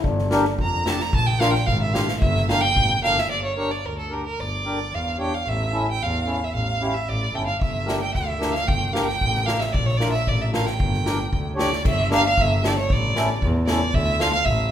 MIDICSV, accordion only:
0, 0, Header, 1, 2, 480
1, 0, Start_track
1, 0, Tempo, 540541
1, 39, Time_signature, 2, 2, 24, 8
1, 7239, Tempo, 529101
1, 10119, Tempo, 520833
1, 13242, End_track
2, 0, Start_track
2, 0, Title_t, "Accordion"
2, 0, Program_c, 0, 21
2, 275, Note_on_c, 0, 62, 75
2, 276, Note_on_c, 0, 67, 69
2, 277, Note_on_c, 0, 70, 92
2, 399, Note_off_c, 0, 62, 0
2, 400, Note_off_c, 0, 67, 0
2, 400, Note_off_c, 0, 70, 0
2, 761, Note_on_c, 0, 62, 60
2, 766, Note_on_c, 0, 69, 57
2, 768, Note_on_c, 0, 67, 45
2, 884, Note_off_c, 0, 62, 0
2, 887, Note_off_c, 0, 69, 0
2, 888, Note_off_c, 0, 67, 0
2, 1242, Note_on_c, 0, 70, 78
2, 1245, Note_on_c, 0, 62, 68
2, 1245, Note_on_c, 0, 65, 59
2, 1366, Note_off_c, 0, 70, 0
2, 1368, Note_off_c, 0, 62, 0
2, 1368, Note_off_c, 0, 65, 0
2, 1718, Note_on_c, 0, 65, 55
2, 1719, Note_on_c, 0, 67, 57
2, 1722, Note_on_c, 0, 62, 46
2, 1845, Note_off_c, 0, 65, 0
2, 1846, Note_off_c, 0, 67, 0
2, 1848, Note_off_c, 0, 62, 0
2, 2208, Note_on_c, 0, 70, 62
2, 2210, Note_on_c, 0, 62, 62
2, 2210, Note_on_c, 0, 67, 60
2, 2331, Note_off_c, 0, 70, 0
2, 2333, Note_off_c, 0, 62, 0
2, 2333, Note_off_c, 0, 67, 0
2, 2682, Note_on_c, 0, 67, 49
2, 2687, Note_on_c, 0, 62, 54
2, 2687, Note_on_c, 0, 70, 56
2, 2809, Note_off_c, 0, 67, 0
2, 2811, Note_off_c, 0, 70, 0
2, 2812, Note_off_c, 0, 62, 0
2, 3167, Note_on_c, 0, 70, 53
2, 3170, Note_on_c, 0, 62, 60
2, 3176, Note_on_c, 0, 67, 47
2, 3292, Note_off_c, 0, 70, 0
2, 3294, Note_off_c, 0, 62, 0
2, 3297, Note_off_c, 0, 67, 0
2, 3639, Note_on_c, 0, 70, 48
2, 3644, Note_on_c, 0, 62, 44
2, 3648, Note_on_c, 0, 67, 48
2, 3768, Note_off_c, 0, 70, 0
2, 3771, Note_off_c, 0, 62, 0
2, 3773, Note_off_c, 0, 67, 0
2, 4130, Note_on_c, 0, 67, 57
2, 4132, Note_on_c, 0, 62, 50
2, 4135, Note_on_c, 0, 70, 53
2, 4254, Note_off_c, 0, 62, 0
2, 4254, Note_off_c, 0, 67, 0
2, 4256, Note_off_c, 0, 70, 0
2, 4602, Note_on_c, 0, 67, 41
2, 4606, Note_on_c, 0, 73, 49
2, 4607, Note_on_c, 0, 62, 42
2, 4729, Note_off_c, 0, 67, 0
2, 4731, Note_off_c, 0, 73, 0
2, 4732, Note_off_c, 0, 62, 0
2, 5084, Note_on_c, 0, 69, 62
2, 5085, Note_on_c, 0, 64, 51
2, 5086, Note_on_c, 0, 61, 53
2, 5210, Note_off_c, 0, 61, 0
2, 5210, Note_off_c, 0, 64, 0
2, 5210, Note_off_c, 0, 69, 0
2, 5557, Note_on_c, 0, 61, 46
2, 5558, Note_on_c, 0, 64, 41
2, 5559, Note_on_c, 0, 69, 50
2, 5685, Note_off_c, 0, 61, 0
2, 5685, Note_off_c, 0, 64, 0
2, 5686, Note_off_c, 0, 69, 0
2, 6048, Note_on_c, 0, 61, 53
2, 6049, Note_on_c, 0, 64, 47
2, 6050, Note_on_c, 0, 67, 65
2, 6168, Note_off_c, 0, 61, 0
2, 6169, Note_off_c, 0, 64, 0
2, 6169, Note_off_c, 0, 67, 0
2, 6517, Note_on_c, 0, 69, 48
2, 6518, Note_on_c, 0, 61, 47
2, 6519, Note_on_c, 0, 64, 42
2, 6640, Note_off_c, 0, 69, 0
2, 6641, Note_off_c, 0, 61, 0
2, 6641, Note_off_c, 0, 64, 0
2, 6974, Note_on_c, 0, 70, 59
2, 6978, Note_on_c, 0, 62, 56
2, 6978, Note_on_c, 0, 67, 53
2, 7106, Note_off_c, 0, 70, 0
2, 7108, Note_off_c, 0, 62, 0
2, 7108, Note_off_c, 0, 67, 0
2, 7460, Note_on_c, 0, 67, 42
2, 7461, Note_on_c, 0, 70, 61
2, 7463, Note_on_c, 0, 62, 40
2, 7591, Note_off_c, 0, 67, 0
2, 7591, Note_off_c, 0, 70, 0
2, 7592, Note_off_c, 0, 62, 0
2, 7944, Note_on_c, 0, 67, 50
2, 7945, Note_on_c, 0, 62, 57
2, 7946, Note_on_c, 0, 70, 65
2, 8074, Note_off_c, 0, 62, 0
2, 8074, Note_off_c, 0, 67, 0
2, 8075, Note_off_c, 0, 70, 0
2, 8423, Note_on_c, 0, 62, 43
2, 8423, Note_on_c, 0, 67, 43
2, 8426, Note_on_c, 0, 70, 53
2, 8554, Note_off_c, 0, 62, 0
2, 8554, Note_off_c, 0, 67, 0
2, 8555, Note_off_c, 0, 70, 0
2, 8908, Note_on_c, 0, 62, 64
2, 8910, Note_on_c, 0, 65, 54
2, 8913, Note_on_c, 0, 70, 67
2, 9036, Note_off_c, 0, 62, 0
2, 9037, Note_off_c, 0, 65, 0
2, 9039, Note_off_c, 0, 70, 0
2, 9390, Note_on_c, 0, 65, 50
2, 9392, Note_on_c, 0, 70, 53
2, 9394, Note_on_c, 0, 62, 46
2, 9516, Note_off_c, 0, 65, 0
2, 9517, Note_off_c, 0, 70, 0
2, 9518, Note_off_c, 0, 62, 0
2, 9870, Note_on_c, 0, 67, 51
2, 9872, Note_on_c, 0, 70, 65
2, 9873, Note_on_c, 0, 62, 51
2, 9995, Note_off_c, 0, 67, 0
2, 9996, Note_off_c, 0, 62, 0
2, 9996, Note_off_c, 0, 70, 0
2, 10326, Note_on_c, 0, 73, 69
2, 10327, Note_on_c, 0, 62, 59
2, 10335, Note_on_c, 0, 67, 50
2, 10464, Note_off_c, 0, 73, 0
2, 10465, Note_off_c, 0, 62, 0
2, 10469, Note_off_c, 0, 67, 0
2, 10833, Note_on_c, 0, 62, 54
2, 10835, Note_on_c, 0, 67, 54
2, 10839, Note_on_c, 0, 70, 75
2, 10959, Note_off_c, 0, 62, 0
2, 10960, Note_off_c, 0, 67, 0
2, 10962, Note_off_c, 0, 70, 0
2, 11315, Note_on_c, 0, 67, 50
2, 11321, Note_on_c, 0, 69, 58
2, 11324, Note_on_c, 0, 62, 51
2, 11440, Note_off_c, 0, 67, 0
2, 11443, Note_off_c, 0, 69, 0
2, 11445, Note_off_c, 0, 62, 0
2, 11811, Note_on_c, 0, 61, 64
2, 11814, Note_on_c, 0, 64, 59
2, 11817, Note_on_c, 0, 69, 72
2, 11928, Note_off_c, 0, 61, 0
2, 11929, Note_off_c, 0, 64, 0
2, 11931, Note_off_c, 0, 69, 0
2, 12282, Note_on_c, 0, 64, 52
2, 12283, Note_on_c, 0, 61, 59
2, 12287, Note_on_c, 0, 69, 52
2, 12403, Note_off_c, 0, 64, 0
2, 12404, Note_off_c, 0, 61, 0
2, 12406, Note_off_c, 0, 69, 0
2, 12761, Note_on_c, 0, 65, 64
2, 12761, Note_on_c, 0, 69, 65
2, 12765, Note_on_c, 0, 62, 66
2, 12881, Note_off_c, 0, 65, 0
2, 12881, Note_off_c, 0, 69, 0
2, 12883, Note_off_c, 0, 62, 0
2, 13242, End_track
0, 0, End_of_file